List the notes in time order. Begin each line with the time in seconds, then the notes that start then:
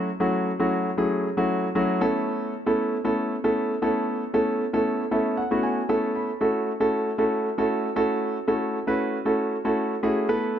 0.20 F#3 A3 C#4 E4 F#4
0.60 F#3 A3 C#4 E4 F#4
0.97 F#3 A3 C#4 E4 G#4
1.37 F#3 A3 C#4 E4 F#4
1.75 F#3 A3 C#4 E4 F#4
2.01 A3 B3 C#4 E4 A4
2.66 A3 B3 C#4 E4 A4
3.04 A3 B3 C#4 E4 A4
3.44 A3 B3 C#4 E4 A4
3.82 A3 B3 C#4 E4 A4
4.34 A3 B3 C#4 E4 A4
4.73 A3 B3 C#4 E4 A4
5.11 A3 B3 C#4 E4 A4 E5
5.37 F#5
5.51 A3 B3 C#4 E4 F#4
5.63 G#5
5.89 A3 B3 C#4 E4 A4 A5
6.15 B5
6.41 A3 C#4 E4 F#4 A4
6.80 A3 C#4 E4 F#4 A4
7.18 A3 C#4 E4 F#4 A4
7.58 A3 C#4 E4 F#4 A4
7.96 A3 C#4 E4 F#4 A4
8.48 A3 C#4 E4 F#4 A4
8.87 A3 C#4 E4 F#4 B4
9.25 A3 C#4 E4 F#4 A4
9.65 A3 C#4 E4 F#4 A4
10.03 A3 C#4 E4 F#4 G#4
10.29 A3 B3 E4 A4 B4